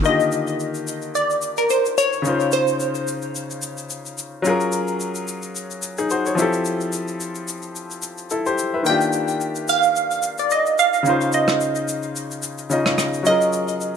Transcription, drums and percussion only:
0.04 shaker
0.20 shaker
0.32 shaker
0.47 shaker
0.60 shaker
0.74 shaker
0.87 shaker
1.02 shaker
1.15 shaker
1.30 shaker
1.42 shaker
1.57 shaker
1.70 shaker
1.85 shaker
1.98 shaker
2.13 shaker
2.25 shaker
2.40 shaker
2.52 shaker
2.67 shaker
2.80 shaker
2.95 shaker
3.07 shaker
3.22 shaker
3.35 shaker
3.50 shaker
3.62 shaker
3.77 shaker
3.90 shaker
4.06 shaker
4.18 shaker
4.45 shaker
4.60 shaker
4.72 shaker
4.88 shaker
5.00 shaker
5.15 shaker
5.28 shaker
5.42 shaker
5.55 shaker
5.71 shaker
5.82 shaker
5.98 shaker
6.10 shaker
6.26 shaker
6.38 shaker
6.53 shaker
6.65 shaker
6.81 shaker
6.92 shaker
7.08 shaker
7.20 shaker
7.35 shaker
7.48 shaker
7.62 shaker
7.75 shaker
7.91 shaker
8.02 shaker
8.18 shaker
8.30 shaker
8.46 shaker
8.58 shaker
8.85 shaker
9.01 shaker
9.13 shaker
9.28 shaker
9.41 shaker
9.55 shaker
9.68 shaker
9.82 shaker
9.96 shaker
10.11 shaker
10.22 shaker
10.38 shaker
10.50 shaker
10.66 shaker
10.78 shaker
10.93 shaker
11.05 shaker
11.21 shaker
11.32 shaker
11.48 cross-stick, shaker
11.60 shaker
11.75 shaker
11.88 shaker
12.03 shaker
12.16 shaker
12.31 shaker
12.42 shaker
12.58 shaker
12.70 shaker
12.86 cross-stick, shaker
12.98 cross-stick, shaker
13.13 shaker
13.25 shaker
13.41 shaker
13.53 shaker
13.68 shaker
13.81 shaker

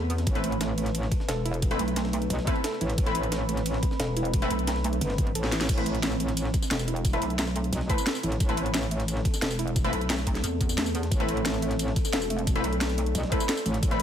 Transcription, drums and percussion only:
0.10 closed hi-hat, ride
0.18 snare, closed hi-hat
0.27 kick, closed hi-hat, ride
0.35 snare, closed hi-hat
0.44 closed hi-hat, ride
0.52 closed hi-hat
0.61 snare, closed hi-hat, ride
0.78 closed hi-hat, ride
0.86 snare, closed hi-hat
0.95 closed hi-hat, ride
1.03 snare
1.12 kick, closed hi-hat, ride
1.20 snare
1.29 snare, closed hi-hat, ride
1.46 closed hi-hat, ride
1.54 closed hi-hat
1.62 kick, closed hi-hat, ride
1.71 snare, closed hi-hat
1.79 closed hi-hat, ride
1.88 closed hi-hat
1.96 snare, closed hi-hat, ride
2.05 snare
2.13 closed hi-hat, ride
2.22 closed hi-hat
2.30 closed hi-hat, ride
2.39 snare
2.47 kick, closed hi-hat, ride
2.56 ride
2.64 snare, closed hi-hat, ride
2.73 snare
2.81 closed hi-hat, ride
2.90 snare, closed hi-hat
2.98 kick, closed hi-hat, ride
3.06 snare, closed hi-hat
3.15 closed hi-hat, ride
3.23 closed hi-hat
3.32 snare, closed hi-hat, ride
3.49 closed hi-hat, ride
3.57 snare, closed hi-hat
3.66 closed hi-hat, ride
3.74 snare
3.83 kick, closed hi-hat, ride
3.91 snare
4.00 snare, closed hi-hat, ride
4.17 closed hi-hat, ride
4.25 closed hi-hat
4.33 kick, closed hi-hat, ride
4.42 snare, closed hi-hat
4.50 closed hi-hat, ride
4.59 closed hi-hat
4.67 snare, closed hi-hat, ride
4.76 snare
4.84 closed hi-hat, ride
4.93 closed hi-hat
5.01 closed hi-hat, ride
5.10 snare
5.18 kick, closed hi-hat, ride
5.27 ride
5.35 closed hi-hat, ride
5.44 snare
5.52 snare, closed hi-hat, ride
5.61 snare, closed hi-hat, ride
5.69 kick, closed hi-hat, ride, tambourine, crash
5.78 snare, closed hi-hat
5.86 closed hi-hat, ride
5.95 closed hi-hat
6.03 snare, closed hi-hat, ride, tambourine
6.12 tambourine
6.20 closed hi-hat, ride
6.28 snare, closed hi-hat
6.37 closed hi-hat, ride, tambourine
6.45 snare
6.54 kick, closed hi-hat, ride, tambourine
6.62 snare, tambourine
6.71 snare, closed hi-hat, ride, tambourine
6.79 tambourine
6.88 closed hi-hat, ride
6.96 closed hi-hat
7.05 kick, closed hi-hat, ride, tambourine
7.13 snare, closed hi-hat
7.22 closed hi-hat, ride
7.30 closed hi-hat
7.39 snare, closed hi-hat, ride, tambourine
7.47 snare, tambourine
7.56 closed hi-hat, ride
7.64 closed hi-hat
7.73 closed hi-hat, ride, tambourine
7.81 snare
7.89 kick, closed hi-hat, ride, tambourine
7.98 ride, tambourine
8.06 snare, closed hi-hat, ride, tambourine
8.15 snare, tambourine
8.23 closed hi-hat, ride, tambourine
8.32 snare, closed hi-hat
8.40 kick, closed hi-hat, ride, tambourine
8.49 snare, closed hi-hat
8.57 closed hi-hat, ride
8.66 closed hi-hat
8.74 snare, closed hi-hat, ride, tambourine
8.83 tambourine
8.91 closed hi-hat, ride
9.00 snare, closed hi-hat
9.08 closed hi-hat, ride, tambourine
9.17 snare
9.25 kick, closed hi-hat, ride, tambourine
9.34 snare, tambourine
9.42 snare, closed hi-hat, ride, tambourine
9.51 tambourine
9.59 closed hi-hat, ride
9.68 closed hi-hat
9.76 kick, closed hi-hat, ride, tambourine
9.84 snare, closed hi-hat
9.93 closed hi-hat, ride
10.01 closed hi-hat
10.10 snare, closed hi-hat, ride, tambourine
10.18 snare, tambourine
10.27 kick, closed hi-hat, ride
10.35 snare, closed hi-hat
10.44 closed hi-hat, ride, tambourine
10.61 kick, closed hi-hat, ride, tambourine
10.69 snare, tambourine
10.78 snare, closed hi-hat, ride, tambourine
10.86 tambourine
10.95 closed hi-hat, ride, tambourine
11.03 snare, closed hi-hat
11.12 kick, closed hi-hat, ride, tambourine
11.20 snare, closed hi-hat
11.29 closed hi-hat, ride
11.37 closed hi-hat
11.45 snare, closed hi-hat, ride, tambourine
11.54 tambourine
11.62 closed hi-hat, ride
11.71 snare, closed hi-hat
11.79 closed hi-hat, ride, tambourine
11.88 snare
11.96 kick, closed hi-hat, ride, tambourine
12.05 snare, tambourine
12.13 snare, closed hi-hat, ride, tambourine
12.22 tambourine
12.30 closed hi-hat, ride
12.39 closed hi-hat
12.47 kick, closed hi-hat, ride, tambourine
12.56 snare, closed hi-hat
12.64 closed hi-hat, ride
12.73 closed hi-hat
12.81 snare, closed hi-hat, ride, tambourine
12.89 snare, tambourine
12.98 closed hi-hat, ride
13.06 closed hi-hat
13.15 closed hi-hat, ride, tambourine
13.23 snare
13.32 kick, closed hi-hat, ride, tambourine
13.40 ride, tambourine
13.49 snare, closed hi-hat, ride, tambourine
13.57 snare, tambourine
13.66 closed hi-hat, ride, tambourine
13.74 snare, closed hi-hat
13.83 kick, closed hi-hat, ride, tambourine
13.91 snare, closed hi-hat

